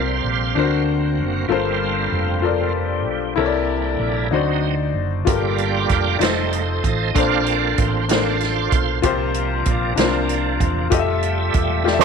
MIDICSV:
0, 0, Header, 1, 6, 480
1, 0, Start_track
1, 0, Key_signature, -1, "major"
1, 0, Tempo, 627615
1, 1149, Time_signature, 6, 3, 24, 8
1, 9212, End_track
2, 0, Start_track
2, 0, Title_t, "Clean electric guitar"
2, 0, Program_c, 0, 27
2, 9183, Note_on_c, 0, 72, 70
2, 9212, Note_off_c, 0, 72, 0
2, 9212, End_track
3, 0, Start_track
3, 0, Title_t, "Grand piano"
3, 0, Program_c, 1, 0
3, 0, Control_c, 1, 64, 127
3, 0, Note_on_c, 1, 48, 53
3, 0, Note_on_c, 1, 60, 63
3, 0, Note_on_c, 1, 65, 60
3, 0, Note_on_c, 1, 67, 59
3, 0, Note_on_c, 1, 70, 74
3, 269, Note_off_c, 1, 60, 0
3, 272, Note_off_c, 1, 65, 0
3, 278, Note_off_c, 1, 67, 0
3, 307, Note_off_c, 1, 70, 0
3, 400, Note_off_c, 1, 48, 0
3, 422, Note_on_c, 1, 62, 74
3, 434, Note_on_c, 1, 65, 51
3, 436, Control_c, 1, 64, 0
3, 438, Note_on_c, 1, 50, 63
3, 442, Note_on_c, 1, 70, 66
3, 450, Note_on_c, 1, 72, 77
3, 479, Note_on_c, 1, 66, 65
3, 480, Note_off_c, 1, 65, 0
3, 586, Control_c, 1, 64, 127
3, 990, Note_off_c, 1, 62, 0
3, 1000, Note_off_c, 1, 70, 0
3, 1004, Note_off_c, 1, 72, 0
3, 1019, Note_off_c, 1, 66, 0
3, 1124, Note_off_c, 1, 50, 0
3, 1137, Note_on_c, 1, 65, 79
3, 1144, Note_on_c, 1, 69, 75
3, 1149, Note_on_c, 1, 43, 66
3, 1153, Note_on_c, 1, 70, 77
3, 1158, Control_c, 1, 64, 0
3, 1162, Note_on_c, 1, 72, 91
3, 1314, Control_c, 1, 64, 127
3, 1708, Note_off_c, 1, 65, 0
3, 1712, Note_off_c, 1, 69, 0
3, 1716, Note_off_c, 1, 70, 0
3, 1720, Note_off_c, 1, 72, 0
3, 1839, Note_off_c, 1, 43, 0
3, 1852, Note_on_c, 1, 65, 68
3, 1861, Note_on_c, 1, 69, 66
3, 1869, Note_on_c, 1, 70, 65
3, 1879, Note_on_c, 1, 74, 81
3, 2426, Note_off_c, 1, 65, 0
3, 2430, Note_off_c, 1, 69, 0
3, 2434, Note_off_c, 1, 70, 0
3, 2439, Note_off_c, 1, 74, 0
3, 2567, Note_on_c, 1, 64, 84
3, 2579, Note_on_c, 1, 69, 74
3, 2582, Note_on_c, 1, 48, 67
3, 2586, Note_on_c, 1, 70, 76
3, 2594, Note_on_c, 1, 73, 69
3, 2600, Control_c, 1, 64, 0
3, 2642, Note_off_c, 1, 73, 0
3, 2645, Note_on_c, 1, 74, 89
3, 2732, Control_c, 1, 64, 127
3, 3143, Note_off_c, 1, 64, 0
3, 3150, Note_off_c, 1, 69, 0
3, 3153, Note_off_c, 1, 70, 0
3, 3182, Note_off_c, 1, 74, 0
3, 3276, Note_off_c, 1, 48, 0
3, 3296, Note_on_c, 1, 63, 73
3, 3305, Note_on_c, 1, 66, 63
3, 3309, Note_on_c, 1, 50, 65
3, 3313, Note_on_c, 1, 72, 63
3, 3321, Control_c, 1, 64, 0
3, 3324, Note_on_c, 1, 74, 76
3, 3475, Control_c, 1, 64, 127
3, 3868, Note_off_c, 1, 63, 0
3, 3873, Note_off_c, 1, 66, 0
3, 3877, Note_off_c, 1, 72, 0
3, 3882, Note_off_c, 1, 74, 0
3, 4000, Note_off_c, 1, 50, 0
3, 4015, Note_on_c, 1, 65, 71
3, 4024, Note_on_c, 1, 67, 59
3, 4029, Note_on_c, 1, 43, 55
3, 4032, Note_on_c, 1, 69, 61
3, 4042, Control_c, 1, 64, 0
3, 4045, Note_on_c, 1, 70, 72
3, 4181, Control_c, 1, 64, 127
3, 4587, Note_off_c, 1, 65, 0
3, 4592, Note_off_c, 1, 67, 0
3, 4596, Note_off_c, 1, 69, 0
3, 4603, Note_off_c, 1, 70, 0
3, 4720, Note_off_c, 1, 43, 0
3, 4734, Note_on_c, 1, 63, 62
3, 4742, Note_on_c, 1, 65, 54
3, 4751, Note_on_c, 1, 69, 55
3, 4757, Note_on_c, 1, 72, 64
3, 4761, Control_c, 1, 64, 0
3, 4903, Control_c, 1, 64, 127
3, 5307, Note_off_c, 1, 63, 0
3, 5311, Note_off_c, 1, 65, 0
3, 5315, Note_off_c, 1, 69, 0
3, 5318, Note_off_c, 1, 72, 0
3, 5464, Note_on_c, 1, 62, 73
3, 5475, Note_on_c, 1, 69, 64
3, 5482, Control_c, 1, 64, 0
3, 5482, Note_on_c, 1, 58, 56
3, 5484, Note_on_c, 1, 70, 62
3, 5493, Note_on_c, 1, 72, 72
3, 5629, Control_c, 1, 64, 127
3, 6031, Note_off_c, 1, 62, 0
3, 6037, Note_off_c, 1, 69, 0
3, 6041, Note_off_c, 1, 70, 0
3, 6046, Note_off_c, 1, 72, 0
3, 6165, Note_off_c, 1, 58, 0
3, 6184, Note_on_c, 1, 62, 60
3, 6192, Note_on_c, 1, 69, 53
3, 6198, Note_on_c, 1, 70, 55
3, 6210, Note_on_c, 1, 72, 66
3, 6751, Note_off_c, 1, 62, 0
3, 6755, Note_off_c, 1, 69, 0
3, 6758, Note_off_c, 1, 70, 0
3, 6764, Note_off_c, 1, 72, 0
3, 6901, Note_on_c, 1, 65, 85
3, 6912, Note_on_c, 1, 48, 68
3, 6912, Note_on_c, 1, 67, 77
3, 6919, Control_c, 1, 64, 0
3, 6920, Note_on_c, 1, 70, 71
3, 6926, Note_on_c, 1, 72, 96
3, 7066, Control_c, 1, 64, 127
3, 7469, Note_off_c, 1, 65, 0
3, 7475, Note_off_c, 1, 67, 0
3, 7478, Note_off_c, 1, 70, 0
3, 7482, Note_off_c, 1, 72, 0
3, 7600, Note_off_c, 1, 48, 0
3, 7616, Note_on_c, 1, 62, 74
3, 7623, Note_on_c, 1, 64, 55
3, 7628, Note_on_c, 1, 48, 70
3, 7633, Note_on_c, 1, 70, 67
3, 7638, Control_c, 1, 64, 0
3, 7642, Note_on_c, 1, 72, 87
3, 7675, Note_off_c, 1, 64, 0
3, 7675, Note_on_c, 1, 65, 65
3, 7763, Control_c, 1, 64, 127
3, 8186, Note_off_c, 1, 62, 0
3, 8194, Note_off_c, 1, 70, 0
3, 8199, Note_off_c, 1, 72, 0
3, 8215, Note_off_c, 1, 65, 0
3, 8317, Note_off_c, 1, 48, 0
3, 8337, Note_on_c, 1, 65, 81
3, 8344, Note_on_c, 1, 67, 72
3, 8352, Note_on_c, 1, 69, 77
3, 8359, Control_c, 1, 64, 0
3, 8363, Note_on_c, 1, 75, 74
3, 8404, Note_off_c, 1, 75, 0
3, 8409, Note_on_c, 1, 76, 90
3, 8472, Control_c, 1, 64, 127
3, 8906, Note_off_c, 1, 65, 0
3, 8909, Note_off_c, 1, 67, 0
3, 8913, Note_off_c, 1, 69, 0
3, 8942, Note_off_c, 1, 76, 0
3, 9055, Note_on_c, 1, 65, 73
3, 9063, Note_on_c, 1, 67, 70
3, 9072, Note_on_c, 1, 69, 62
3, 9082, Note_on_c, 1, 74, 65
3, 9124, Note_off_c, 1, 74, 0
3, 9129, Note_on_c, 1, 76, 82
3, 9212, Note_off_c, 1, 65, 0
3, 9212, Note_off_c, 1, 67, 0
3, 9212, Note_off_c, 1, 69, 0
3, 9212, Note_off_c, 1, 76, 0
3, 9212, End_track
4, 0, Start_track
4, 0, Title_t, "Tonewheel organ"
4, 0, Program_c, 2, 16
4, 0, Note_on_c, 2, 55, 54
4, 0, Note_on_c, 2, 72, 75
4, 0, Note_on_c, 2, 77, 59
4, 429, Note_on_c, 2, 58, 52
4, 433, Note_on_c, 2, 60, 50
4, 435, Note_on_c, 2, 66, 58
4, 636, Note_off_c, 2, 72, 0
4, 637, Note_off_c, 2, 55, 0
4, 638, Note_off_c, 2, 77, 0
4, 1119, Note_off_c, 2, 58, 0
4, 1121, Note_off_c, 2, 60, 0
4, 1122, Note_off_c, 2, 66, 0
4, 1132, Note_on_c, 2, 55, 52
4, 1135, Note_on_c, 2, 58, 48
4, 1140, Note_on_c, 2, 65, 60
4, 1142, Note_on_c, 2, 60, 45
4, 1858, Note_off_c, 2, 58, 0
4, 1860, Note_off_c, 2, 60, 0
4, 1861, Note_on_c, 2, 53, 48
4, 1862, Note_off_c, 2, 65, 0
4, 1868, Note_on_c, 2, 58, 44
4, 1870, Note_on_c, 2, 60, 45
4, 1871, Note_on_c, 2, 65, 53
4, 2081, Note_off_c, 2, 53, 0
4, 2085, Note_off_c, 2, 58, 0
4, 2086, Note_off_c, 2, 60, 0
4, 2087, Note_off_c, 2, 65, 0
4, 2552, Note_off_c, 2, 55, 0
4, 2578, Note_on_c, 2, 62, 47
4, 2579, Note_on_c, 2, 55, 49
4, 2580, Note_on_c, 2, 58, 47
4, 2582, Note_on_c, 2, 64, 52
4, 3274, Note_off_c, 2, 62, 0
4, 3275, Note_off_c, 2, 55, 0
4, 3275, Note_off_c, 2, 58, 0
4, 3276, Note_off_c, 2, 64, 0
4, 3309, Note_on_c, 2, 60, 49
4, 3312, Note_on_c, 2, 54, 51
4, 3318, Note_on_c, 2, 63, 56
4, 3630, Note_off_c, 2, 60, 0
4, 3631, Note_off_c, 2, 54, 0
4, 3634, Note_off_c, 2, 63, 0
4, 4034, Note_on_c, 2, 55, 52
4, 4037, Note_on_c, 2, 58, 44
4, 4039, Note_on_c, 2, 65, 57
4, 4041, Note_on_c, 2, 67, 56
4, 4044, Note_on_c, 2, 74, 79
4, 4722, Note_off_c, 2, 55, 0
4, 4724, Note_off_c, 2, 58, 0
4, 4725, Note_off_c, 2, 65, 0
4, 4726, Note_off_c, 2, 67, 0
4, 4736, Note_on_c, 2, 55, 51
4, 4745, Note_on_c, 2, 69, 63
4, 4747, Note_on_c, 2, 63, 57
4, 4747, Note_on_c, 2, 72, 63
4, 4751, Note_on_c, 2, 57, 50
4, 4753, Note_on_c, 2, 75, 88
4, 4779, Note_off_c, 2, 74, 0
4, 5063, Note_off_c, 2, 55, 0
4, 5068, Note_off_c, 2, 63, 0
4, 5070, Note_off_c, 2, 57, 0
4, 5437, Note_off_c, 2, 69, 0
4, 5438, Note_off_c, 2, 72, 0
4, 5467, Note_on_c, 2, 58, 52
4, 5468, Note_on_c, 2, 77, 93
4, 5470, Note_on_c, 2, 60, 47
4, 5471, Note_on_c, 2, 65, 67
4, 5475, Note_on_c, 2, 62, 54
4, 5478, Note_on_c, 2, 74, 69
4, 5493, Note_off_c, 2, 75, 0
4, 5707, Note_off_c, 2, 74, 0
4, 5716, Note_on_c, 2, 74, 86
4, 5717, Note_off_c, 2, 77, 0
4, 5947, Note_on_c, 2, 72, 75
4, 5961, Note_off_c, 2, 74, 0
4, 6158, Note_off_c, 2, 58, 0
4, 6160, Note_off_c, 2, 60, 0
4, 6160, Note_off_c, 2, 65, 0
4, 6162, Note_off_c, 2, 62, 0
4, 6187, Note_off_c, 2, 72, 0
4, 6189, Note_on_c, 2, 58, 47
4, 6192, Note_on_c, 2, 65, 61
4, 6194, Note_on_c, 2, 74, 82
4, 6196, Note_on_c, 2, 60, 44
4, 6196, Note_on_c, 2, 62, 51
4, 6196, Note_on_c, 2, 72, 59
4, 6406, Note_off_c, 2, 58, 0
4, 6409, Note_off_c, 2, 60, 0
4, 6409, Note_off_c, 2, 62, 0
4, 6701, Note_off_c, 2, 74, 0
4, 6880, Note_off_c, 2, 65, 0
4, 6882, Note_off_c, 2, 72, 0
4, 6903, Note_on_c, 2, 53, 51
4, 6912, Note_on_c, 2, 62, 56
4, 6916, Note_on_c, 2, 58, 46
4, 7595, Note_off_c, 2, 53, 0
4, 7599, Note_off_c, 2, 62, 0
4, 7602, Note_off_c, 2, 58, 0
4, 7630, Note_on_c, 2, 53, 56
4, 7630, Note_on_c, 2, 58, 52
4, 7638, Note_on_c, 2, 62, 60
4, 8318, Note_off_c, 2, 53, 0
4, 8318, Note_off_c, 2, 58, 0
4, 8322, Note_off_c, 2, 62, 0
4, 8357, Note_on_c, 2, 55, 53
4, 8358, Note_on_c, 2, 57, 46
4, 8363, Note_on_c, 2, 76, 59
4, 9048, Note_off_c, 2, 55, 0
4, 9055, Note_off_c, 2, 57, 0
4, 9057, Note_on_c, 2, 55, 45
4, 9064, Note_on_c, 2, 57, 44
4, 9068, Note_on_c, 2, 65, 51
4, 9212, Note_off_c, 2, 55, 0
4, 9212, Note_off_c, 2, 57, 0
4, 9212, Note_off_c, 2, 65, 0
4, 9212, Note_off_c, 2, 76, 0
4, 9212, End_track
5, 0, Start_track
5, 0, Title_t, "Fingered electric bass"
5, 0, Program_c, 3, 33
5, 0, Note_on_c, 3, 36, 94
5, 154, Note_off_c, 3, 36, 0
5, 184, Note_on_c, 3, 34, 74
5, 406, Note_off_c, 3, 34, 0
5, 426, Note_on_c, 3, 38, 87
5, 906, Note_on_c, 3, 30, 78
5, 917, Note_off_c, 3, 38, 0
5, 1128, Note_off_c, 3, 30, 0
5, 1136, Note_on_c, 3, 31, 95
5, 1592, Note_off_c, 3, 31, 0
5, 1621, Note_on_c, 3, 29, 70
5, 2341, Note_off_c, 3, 29, 0
5, 2341, Note_on_c, 3, 35, 87
5, 2566, Note_off_c, 3, 35, 0
5, 2580, Note_on_c, 3, 36, 86
5, 3035, Note_off_c, 3, 36, 0
5, 3055, Note_on_c, 3, 34, 74
5, 3284, Note_off_c, 3, 34, 0
5, 3299, Note_on_c, 3, 38, 88
5, 3755, Note_off_c, 3, 38, 0
5, 3778, Note_on_c, 3, 30, 81
5, 4005, Note_off_c, 3, 30, 0
5, 4031, Note_on_c, 3, 31, 87
5, 4481, Note_off_c, 3, 31, 0
5, 4511, Note_on_c, 3, 29, 76
5, 4732, Note_off_c, 3, 29, 0
5, 4739, Note_on_c, 3, 29, 89
5, 5195, Note_off_c, 3, 29, 0
5, 5228, Note_on_c, 3, 33, 88
5, 5450, Note_off_c, 3, 33, 0
5, 5471, Note_on_c, 3, 34, 84
5, 5920, Note_off_c, 3, 34, 0
5, 5954, Note_on_c, 3, 33, 76
5, 6641, Note_off_c, 3, 33, 0
5, 6672, Note_on_c, 3, 35, 92
5, 6892, Note_off_c, 3, 35, 0
5, 6909, Note_on_c, 3, 36, 93
5, 7358, Note_off_c, 3, 36, 0
5, 7390, Note_on_c, 3, 34, 75
5, 7610, Note_off_c, 3, 34, 0
5, 7627, Note_on_c, 3, 36, 88
5, 8077, Note_off_c, 3, 36, 0
5, 8108, Note_on_c, 3, 28, 98
5, 8329, Note_off_c, 3, 28, 0
5, 8350, Note_on_c, 3, 29, 87
5, 8798, Note_off_c, 3, 29, 0
5, 8825, Note_on_c, 3, 28, 72
5, 9212, Note_off_c, 3, 28, 0
5, 9212, End_track
6, 0, Start_track
6, 0, Title_t, "Drums"
6, 4030, Note_on_c, 9, 42, 81
6, 4031, Note_on_c, 9, 36, 115
6, 4107, Note_off_c, 9, 36, 0
6, 4107, Note_off_c, 9, 42, 0
6, 4269, Note_on_c, 9, 42, 46
6, 4346, Note_off_c, 9, 42, 0
6, 4507, Note_on_c, 9, 42, 49
6, 4511, Note_on_c, 9, 36, 85
6, 4583, Note_off_c, 9, 42, 0
6, 4588, Note_off_c, 9, 36, 0
6, 4749, Note_on_c, 9, 42, 81
6, 4765, Note_on_c, 9, 38, 87
6, 4826, Note_off_c, 9, 42, 0
6, 4842, Note_off_c, 9, 38, 0
6, 4991, Note_on_c, 9, 42, 49
6, 5068, Note_off_c, 9, 42, 0
6, 5231, Note_on_c, 9, 36, 83
6, 5232, Note_on_c, 9, 42, 50
6, 5308, Note_off_c, 9, 36, 0
6, 5308, Note_off_c, 9, 42, 0
6, 5473, Note_on_c, 9, 36, 113
6, 5474, Note_on_c, 9, 42, 76
6, 5549, Note_off_c, 9, 36, 0
6, 5550, Note_off_c, 9, 42, 0
6, 5708, Note_on_c, 9, 42, 44
6, 5785, Note_off_c, 9, 42, 0
6, 5948, Note_on_c, 9, 42, 52
6, 5953, Note_on_c, 9, 36, 92
6, 6024, Note_off_c, 9, 42, 0
6, 6029, Note_off_c, 9, 36, 0
6, 6188, Note_on_c, 9, 42, 81
6, 6204, Note_on_c, 9, 38, 90
6, 6265, Note_off_c, 9, 42, 0
6, 6281, Note_off_c, 9, 38, 0
6, 6428, Note_on_c, 9, 42, 45
6, 6447, Note_on_c, 9, 38, 33
6, 6504, Note_off_c, 9, 42, 0
6, 6523, Note_off_c, 9, 38, 0
6, 6669, Note_on_c, 9, 42, 49
6, 6671, Note_on_c, 9, 36, 88
6, 6745, Note_off_c, 9, 42, 0
6, 6747, Note_off_c, 9, 36, 0
6, 6908, Note_on_c, 9, 42, 80
6, 6911, Note_on_c, 9, 36, 107
6, 6985, Note_off_c, 9, 42, 0
6, 6987, Note_off_c, 9, 36, 0
6, 7146, Note_on_c, 9, 42, 49
6, 7222, Note_off_c, 9, 42, 0
6, 7384, Note_on_c, 9, 42, 51
6, 7391, Note_on_c, 9, 36, 88
6, 7461, Note_off_c, 9, 42, 0
6, 7468, Note_off_c, 9, 36, 0
6, 7628, Note_on_c, 9, 42, 81
6, 7643, Note_on_c, 9, 38, 94
6, 7704, Note_off_c, 9, 42, 0
6, 7720, Note_off_c, 9, 38, 0
6, 7871, Note_on_c, 9, 42, 51
6, 7947, Note_off_c, 9, 42, 0
6, 8110, Note_on_c, 9, 36, 89
6, 8111, Note_on_c, 9, 42, 51
6, 8187, Note_off_c, 9, 36, 0
6, 8187, Note_off_c, 9, 42, 0
6, 8348, Note_on_c, 9, 42, 80
6, 8350, Note_on_c, 9, 36, 112
6, 8424, Note_off_c, 9, 42, 0
6, 8426, Note_off_c, 9, 36, 0
6, 8585, Note_on_c, 9, 42, 46
6, 8661, Note_off_c, 9, 42, 0
6, 8824, Note_on_c, 9, 42, 52
6, 8830, Note_on_c, 9, 36, 92
6, 8900, Note_off_c, 9, 42, 0
6, 8907, Note_off_c, 9, 36, 0
6, 9080, Note_on_c, 9, 38, 52
6, 9157, Note_off_c, 9, 38, 0
6, 9212, End_track
0, 0, End_of_file